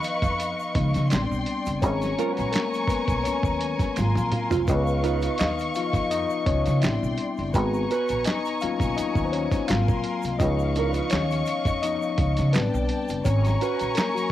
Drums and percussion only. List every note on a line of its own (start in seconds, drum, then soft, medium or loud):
0.03 closed hi-hat medium
0.03 shaker soft
0.22 kick medium
0.22 closed hi-hat soft
0.22 shaker soft
0.40 closed hi-hat medium
0.40 shaker medium
0.59 shaker soft
0.75 kick medium
0.75 closed hi-hat medium
0.94 snare soft
0.94 closed hi-hat soft
0.94 shaker soft
1.10 finger snap medium
1.10 snare loud
1.10 clap medium
1.10 closed hi-hat medium
1.10 shaker medium
1.32 shaker soft
1.46 closed hi-hat medium
1.66 closed hi-hat medium
1.66 shaker medium
1.82 kick loud
1.82 closed hi-hat medium
1.82 shaker medium
2.02 snare soft
2.02 closed hi-hat soft
2.02 shaker soft
2.18 closed hi-hat medium
2.18 shaker soft
2.36 closed hi-hat medium
2.36 shaker soft
2.52 finger snap medium
2.52 snare loud
2.52 closed hi-hat medium
2.52 shaker medium
2.56 clap medium
2.73 closed hi-hat soft
2.73 shaker soft
2.87 kick medium
2.87 closed hi-hat medium
2.87 shaker medium
3.08 kick medium
3.08 closed hi-hat soft
3.08 shaker soft
3.25 closed hi-hat medium
3.25 shaker medium
3.43 kick medium
3.43 shaker soft
3.61 closed hi-hat medium
3.79 kick medium
3.79 snare soft
3.79 closed hi-hat soft
3.79 shaker soft
3.96 finger snap medium
3.96 snare medium
3.96 closed hi-hat medium
3.96 shaker medium
4.16 closed hi-hat soft
4.16 high tom medium
4.16 shaker soft
4.32 closed hi-hat medium
4.32 mid tom medium
4.51 closed hi-hat soft
4.51 floor tom medium
4.51 shaker medium
4.68 kick loud
4.68 closed hi-hat medium
4.68 shaker medium
4.87 shaker soft
5.04 closed hi-hat medium
5.04 shaker soft
5.22 closed hi-hat medium
5.22 shaker soft
5.38 finger snap medium
5.38 snare loud
5.38 closed hi-hat medium
5.38 shaker medium
5.42 clap medium
5.59 closed hi-hat soft
5.59 shaker soft
5.75 closed hi-hat medium
5.75 shaker medium
5.94 kick medium
5.94 closed hi-hat soft
5.94 shaker soft
6.11 closed hi-hat medium
6.11 shaker medium
6.30 shaker soft
6.47 kick loud
6.47 closed hi-hat medium
6.66 snare soft
6.66 closed hi-hat soft
6.66 shaker soft
6.82 finger snap medium
6.82 snare loud
6.82 clap medium
6.82 closed hi-hat medium
6.82 shaker medium
7.04 shaker soft
7.18 closed hi-hat medium
7.37 closed hi-hat soft
7.37 shaker soft
7.54 kick loud
7.54 closed hi-hat medium
7.54 shaker medium
7.73 shaker soft
7.90 closed hi-hat medium
7.90 shaker soft
8.08 closed hi-hat soft
8.08 shaker soft
8.24 finger snap medium
8.24 snare loud
8.24 closed hi-hat medium
8.24 shaker medium
8.28 clap medium
8.45 closed hi-hat soft
8.45 shaker soft
8.60 closed hi-hat medium
8.60 shaker medium
8.80 kick medium
8.80 closed hi-hat soft
8.80 shaker soft
8.97 closed hi-hat medium
8.97 shaker medium
9.15 kick medium
9.15 shaker soft
9.33 closed hi-hat medium
9.51 kick medium
9.51 snare soft
9.51 closed hi-hat soft
9.51 shaker soft
9.68 finger snap medium
9.68 snare loud
9.68 clap medium
9.68 closed hi-hat medium
9.68 shaker medium
9.88 kick medium
9.88 shaker soft
10.04 closed hi-hat medium
10.22 closed hi-hat soft
10.22 shaker medium
10.40 kick loud
10.40 closed hi-hat medium
10.40 shaker medium
10.59 shaker soft
10.75 closed hi-hat medium
10.75 shaker soft
10.94 closed hi-hat soft
10.94 shaker soft
11.10 finger snap medium
11.10 snare loud
11.10 closed hi-hat medium
11.10 shaker medium
11.14 clap medium
11.31 closed hi-hat soft
11.31 shaker soft
11.46 closed hi-hat medium
11.46 shaker medium
11.65 kick medium
11.65 closed hi-hat soft
11.65 shaker soft
11.83 closed hi-hat medium
11.83 shaker medium
12.02 shaker soft
12.18 kick medium
12.18 closed hi-hat medium
12.37 snare soft
12.37 closed hi-hat soft
12.37 shaker soft
12.53 finger snap medium
12.53 snare loud
12.53 clap medium
12.53 closed hi-hat medium
12.53 shaker medium
12.74 shaker soft
12.89 closed hi-hat medium
13.08 closed hi-hat soft
13.08 shaker medium
13.25 kick loud
13.25 closed hi-hat medium
13.25 shaker medium
13.45 snare soft
13.45 closed hi-hat soft
13.45 shaker soft
13.61 closed hi-hat medium
13.61 shaker soft
13.79 closed hi-hat soft
13.79 shaker soft
13.95 finger snap medium
13.95 snare loud
13.95 closed hi-hat medium
13.95 shaker medium
13.99 clap medium
14.17 closed hi-hat soft
14.17 shaker soft